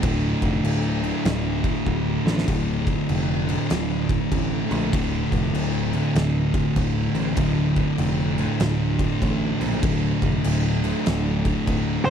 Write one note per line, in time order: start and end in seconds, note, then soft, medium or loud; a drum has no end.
0.02 0.33 D1 medium
0.02 1.05 D2 medium
0.02 1.02 A2 medium
0.02 1.02 D3 medium
0.02 kick loud
0.02 crash loud
0.42 0.59 F1 medium
0.42 kick medium
0.42 crash medium
0.64 1.11 D1 medium
0.64 crash medium
1.02 2.46 D2 medium
1.02 2.47 A2 medium
1.02 2.49 D3 medium
1.02 crash medium
1.25 1.72 D1 loud
1.25 snare loud
1.25 crash medium
1.64 kick loud
1.64 crash medium
1.86 2.17 D1 loud
1.86 kick medium
2.25 2.43 A1 medium
2.25 2.47 D2 medium
2.25 2.47 A2 medium
2.25 2.49 D3 medium
2.25 snare medium
2.38 snare medium
2.46 2.95 D1 medium
2.46 3.50 D2 medium
2.46 3.46 A2 medium
2.46 3.47 D3 medium
2.46 kick loud
2.46 crash medium
2.87 kick medium
2.87 crash medium
3.09 3.56 F1 loud
3.09 crash medium
3.47 4.92 D2 medium
3.47 4.92 A2 medium
3.47 4.94 D3 medium
3.47 crash medium
3.70 4.17 D1 medium
3.70 snare loud
3.70 crash medium
4.09 kick loud
4.09 crash medium
4.32 4.62 A1 medium
4.32 kick loud
4.32 crash medium
4.69 4.88 A#1 loud
4.69 4.92 D2 medium
4.69 4.92 A2 medium
4.69 4.95 D3 medium
4.69 crash medium
4.92 5.23 D1 loud
4.92 5.95 D2 medium
4.92 5.91 A2 medium
4.92 5.92 D3 loud
4.92 kick loud
4.92 crash medium
5.32 5.49 F1 medium
5.32 kick medium
5.32 crash medium
5.53 6.00 D1 loud
5.53 crash medium
5.93 7.35 D2 medium
5.93 7.37 A2 medium
5.93 7.38 D3 medium
5.93 crash medium
6.15 6.62 D1 loud
6.15 snare loud
6.15 crash medium
6.54 kick loud
6.54 crash medium
6.76 7.06 D1 loud
6.76 kick medium
6.76 crash medium
7.14 7.32 A1 medium
7.14 7.36 D2 medium
7.14 7.37 A2 medium
7.14 7.39 D3 medium
7.14 crash medium
7.36 7.84 D1 loud
7.36 8.39 D2 medium
7.36 8.36 A2 medium
7.36 8.36 D3 loud
7.36 kick loud
7.36 crash medium
7.76 kick medium
7.76 crash medium
7.98 8.45 F1 loud
7.98 crash medium
8.37 9.82 D2 medium
8.37 9.82 A2 medium
8.37 9.85 D3 medium
8.37 crash medium
8.60 9.07 D1 medium
8.60 snare loud
8.60 crash medium
8.99 kick medium
8.99 crash medium
9.22 9.52 A1 loud
9.22 kick medium
9.22 crash medium
9.60 9.78 A#1 medium
9.60 9.82 D2 medium
9.60 9.82 A2 medium
9.60 9.85 D3 medium
9.60 crash medium
9.82 10.13 D1 medium
9.82 10.81 D2 medium
9.82 10.81 A2 medium
9.82 10.82 D3 medium
9.82 kick loud
9.82 crash loud
10.22 10.39 F1 medium
10.22 kick medium
10.22 crash medium
10.44 10.92 D1 loud
10.44 crash medium
10.83 12.10 D2 medium
10.83 12.10 A2 medium
10.83 12.10 D3 medium
10.83 crash medium
11.06 11.53 D1 loud
11.06 snare loud
11.06 crash medium
11.45 kick medium
11.45 crash medium
11.67 11.97 D1 medium
11.67 kick medium
11.67 crash medium
12.05 12.10 D3 medium
12.05 12.10 C5 loud
12.05 high tom medium